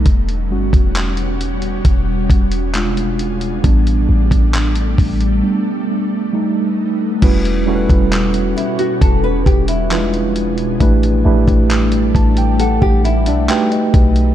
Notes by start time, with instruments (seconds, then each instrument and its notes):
0.06 808-style bass E1, ambient pad B2 G3 C#4 F#4, kick, closed hi-hat
0.29 closed hi-hat
0.51 808-style bass G1, tine electric piano G3 C#4 F#4
0.73 808-style bass E1, kick, closed hi-hat
0.95 clap, closed hi-hat
1.17 closed hi-hat
1.41 closed hi-hat
1.62 closed hi-hat
1.85 808-style bass E1, kick, closed hi-hat
2.30 808-style bass E1, kick, closed hi-hat
2.52 closed hi-hat
2.74 tine electric piano G#3 D4 F4, ambient pad D4, clap, closed hi-hat
2.97 closed hi-hat
3.19 closed hi-hat
3.41 closed hi-hat
3.64 808-style bass A1, tine electric piano G3 B3 D4, ambient pad G3 A3, kick, closed hi-hat
3.87 closed hi-hat
4.09 808-style bass A1
4.31 808-style bass A1, kick, closed hi-hat
4.54 clap, closed hi-hat
4.75 closed hi-hat
4.98 808-style bass A1, kick, open hi-hat
5.21 closed hi-hat
5.43 tine electric piano G3 B3 D4
6.33 tine electric piano G3 A3 D#4
7.22 808-style bass E1, ambient pad B2 G3 C#4 F#4, tine electric piano G3 C#4 E4 F#4 B4, kick, closed hi-hat, crash
7.45 closed hi-hat
7.66 tine electric piano G3 C#4 E4 F#4 A4
7.75 tine electric piano B4
7.89 808-style bass E1, kick, closed hi-hat
8.12 clap, closed hi-hat
8.34 closed hi-hat
8.57 nylon-string guitar E4, closed hi-hat
8.79 nylon-string guitar F#4, closed hi-hat
9.01 808-style bass E1, nylon-string guitar A4, kick, closed hi-hat
9.24 nylon-string guitar B4
9.46 808-style bass E1, nylon-string guitar G4, kick, closed hi-hat
9.68 nylon-string guitar E4, closed hi-hat
9.90 tine electric piano F3 D4 E4 F4 B4, clap, closed hi-hat
9.97 tine electric piano G#3
10.14 closed hi-hat
10.36 closed hi-hat
10.58 closed hi-hat
10.80 808-style bass A1, ambient pad G3 A3 D4, tine electric piano A3 D4 E4 G4 B4, kick, closed hi-hat
11.03 closed hi-hat
11.25 808-style bass A1, tine electric piano A3 D4 E4 G4 B4
11.48 808-style bass A1, kick, closed hi-hat
11.70 clap, closed hi-hat
11.92 closed hi-hat
12.15 808-style bass A1, tine electric piano A5, kick, closed hi-hat
12.37 tine electric piano G5, closed hi-hat
12.60 nylon-string guitar A4, tine electric piano F#5, closed hi-hat
12.82 808-style bass A1, nylon-string guitar G4, kick
13.04 nylon-string guitar E4, closed hi-hat
13.26 808-style bass B1, nylon-string guitar D4, tine electric piano E5, closed hi-hat
13.48 tine electric piano A3 D#4 F#4 G4 B4 G5, clap, closed hi-hat
13.72 tine electric piano D#5, closed hi-hat
13.94 808-style bass B1, kick, closed hi-hat
14.16 closed hi-hat